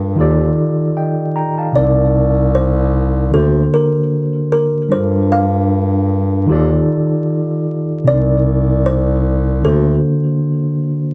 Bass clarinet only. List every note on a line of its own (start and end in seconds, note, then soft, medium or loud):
0.00 0.14 G2 loud
0.18 0.52 D#2 medium
1.76 3.30 C2 loud
3.33 3.67 D2 loud
4.92 6.45 G2 loud
6.49 6.83 D#2 loud
8.07 9.61 C2 loud
9.65 9.99 D2 loud